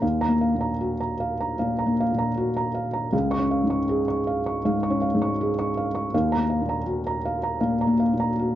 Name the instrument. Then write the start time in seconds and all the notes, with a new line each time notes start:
felt piano
0.02 D#2 F5
0.21 A#5
0.28 A#3
0.41 F5
0.55 A#2
0.61 A#5
0.81 F#4
1.00 A#5
1.20 F5
1.41 A#5
1.59 A#2 F5
1.79 A#5
1.86 A#3
2.00 F5
2.13 A#2
2.18 A#5
2.37 F#4
2.57 A#5
2.75 F5
2.93 A#5
3.13 C#2 F5
3.31 C#6
3.38 C#4
3.51 F5
3.64 G#2
3.70 C#6
3.89 G#4
4.08 C#6
4.27 F5
4.46 C#6
4.65 G#2 F5
4.83 C#6
4.90 C#4
5.02 F5
5.15 G#2
5.22 C#6
5.41 G#4
5.59 C#6
5.77 F5
5.95 C#6
6.14 D#2 F5
6.32 A#5
6.38 A#3
6.50 F5
6.62 A#2
6.69 A#5
6.87 F#4
7.07 A#5
7.25 F5
7.43 A#5
7.61 A#2 F5
7.81 A#5
7.87 A#3
8.00 F5
8.14 A#2
8.20 A#5
8.39 F#4